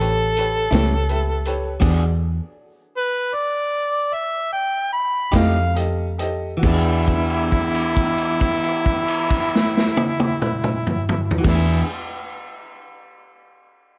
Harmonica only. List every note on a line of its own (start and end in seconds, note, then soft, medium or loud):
0.00 1.79 A4 medium
2.97 3.36 B4 medium
3.34 4.15 D5 medium
4.13 4.51 E5 medium
4.53 4.91 G5 medium
4.93 5.37 B5 medium
5.36 5.75 F5 medium
6.63 11.30 E4 medium
11.45 11.82 E4 medium